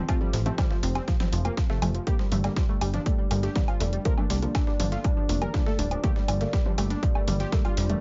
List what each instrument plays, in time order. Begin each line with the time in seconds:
Already playing: analog synth pad A3 C4 G4 C5
0.09 synth stab C3 F3 A3, synth pluck C4, analog synth lead F4, kick, closed hi-hat, low woodblock
0.21 analog synth lead F3, synth pluck G3
0.33 analog synth bass A1, analog synth lead F3, synth pluck F3, snare, open hi-hat
0.46 synth stab C3 F3 A3, synth pluck C4, closed hi-hat
0.58 analog synth lead F3, synth pluck G3, kick, snare, closed hi-hat, mid tom, low woodblock
0.70 analog synth lead F3, synth pluck F3, snare
0.83 analog synth bass F1, analog synth lead F3, synth pluck C4, closed hi-hat, open hi-hat
0.95 synth pluck G3, analog synth lead C4, snare, closed hi-hat, low woodblock
1.08 synth pluck F3, analog synth lead F3, kick, snare, closed hi-hat
1.20 analog synth lead F3, synth pluck C4, snare, closed hi-hat, mid tom
1.32 analog synth bass F1, synth pluck F3, analog synth lead F3, closed hi-hat, open hi-hat
1.45 analog synth lead A#3, synth pluck F4, closed hi-hat, low woodblock
1.57 analog synth lead F3, kick, snare, closed hi-hat
1.70 synth pluck C3, synth stab C3 F3 A3, analog synth lead A3, snare
1.82 analog synth bass F1, synth stab C3 F3 A3, synth pluck F3, analog synth lead F3, closed hi-hat, open hi-hat, mid tom, low woodblock
1.95 analog synth lead F3, synth pluck F3, closed hi-hat
2.07 synth stab D3 G3 A#3, synth pluck G3, analog synth pad A#3 D4 D5, analog synth lead G4, kick, closed hi-hat
2.19 synth pluck F3, analog synth lead G3, snare
2.32 analog synth bass G1, analog synth lead G3, synth pluck A3, closed hi-hat, open hi-hat, mid tom
2.44 synth stab D3 G3 A#3, synth pluck G3, snare, closed hi-hat, low woodblock
2.56 synth pluck F3, analog synth lead G3, kick, snare, closed hi-hat
2.69 analog synth lead G3, synth pluck A3
2.81 analog synth bass G1, analog synth lead G3, synth pluck G3, closed hi-hat, open hi-hat, low woodblock
2.94 synth pluck F3, analog synth lead D4, snare, closed hi-hat, mid tom
3.06 analog synth lead G3, synth pluck A3, kick, closed hi-hat
3.18 analog synth lead G3, synth pluck G3
3.31 analog synth bass G1, synth stab D3 G3 A#3, synth pluck F3, analog synth lead G3, closed hi-hat, open hi-hat, low woodblock
3.43 synth pluck A3, analog synth lead G4, snare, closed hi-hat
3.56 synth stab D3 G3 A#3, synth pluck G3, analog synth lead G3, kick, snare, closed hi-hat, mid tom
3.68 synth pluck F3, analog synth lead F4, closed hi-hat, low woodblock
3.80 analog synth bass F1, analog synth lead G3, synth pluck A3, snare, closed hi-hat, open hi-hat
3.93 synth pluck G3, analog synth lead G3, closed hi-hat
4.05 synth stab D3 G3 A#3, synth pluck F3, analog synth lead A#4, kick, closed hi-hat
4.18 synth pluck A3, analog synth lead D4, mid tom, low woodblock
4.30 analog synth bass C2, synth pluck G3, analog synth lead D4, snare, open hi-hat
4.42 synth stab D3 G3 A#3, synth pluck F3, closed hi-hat
4.55 synth pluck A3, analog synth lead D4, kick, snare, closed hi-hat, low woodblock
4.67 synth pluck G3, analog synth lead D4, snare
4.80 analog synth bass G1, synth pluck F3, analog synth lead D4, closed hi-hat, open hi-hat, mid tom
4.92 synth pluck A3, analog synth lead F4, snare, closed hi-hat
5.04 synth pluck G3, analog synth lead D4, kick, closed hi-hat, low woodblock
5.17 synth pluck F3, analog synth lead D4
5.29 analog synth bass F1, synth stab D3 G3 A#3, synth pluck A3, analog synth lead D4, closed hi-hat, open hi-hat
5.41 synth pluck G3, analog synth lead A#4, closed hi-hat, mid tom, low woodblock
5.54 synth stab D3 G3 A#3, synth pluck F3, analog synth lead D4, kick, snare, closed hi-hat
5.66 synth pluck A3, analog synth lead A4, snare
5.79 analog synth bass D1, synth pluck G3, analog synth lead D4, closed hi-hat, open hi-hat
5.91 synth pluck F3, analog synth lead D4, closed hi-hat, low woodblock
6.03 synth stab D3 G3 A#3, synth pluck A3, analog synth lead G4, kick, closed hi-hat, mid tom
6.16 analog synth lead G3, synth pluck G3, snare
6.28 analog synth bass G1, synth pluck F3, analog synth lead G3, closed hi-hat, open hi-hat, low woodblock
6.41 synth stab D3 G3 A#3, synth pluck A3, snare, closed hi-hat
6.53 synth pluck G3, analog synth lead G3, kick, snare, closed hi-hat
6.66 synth pluck F3, analog synth lead G3, mid tom
6.78 analog synth bass G1, analog synth lead G3, synth pluck A3, closed hi-hat, open hi-hat, low woodblock
6.90 synth pluck G3, analog synth lead D4, snare, closed hi-hat
7.03 synth pluck F3, analog synth lead G3, kick, closed hi-hat
7.15 analog synth lead G3, synth pluck A3, low woodblock
7.28 analog synth bass G1, synth stab D3 G3 A#3, synth pluck G3, analog synth lead G3, closed hi-hat, open hi-hat, mid tom
7.40 synth pluck F3, analog synth lead G4, snare, closed hi-hat
7.52 synth stab D3 G3 A#3, analog synth lead G3, synth pluck A3, kick, snare, closed hi-hat
7.65 synth pluck G3, analog synth lead F4, closed hi-hat, low woodblock
7.77 analog synth bass F1, synth pluck F3, analog synth lead G3, snare, closed hi-hat, open hi-hat
7.90 analog synth lead G3, synth pluck A3, closed hi-hat, mid tom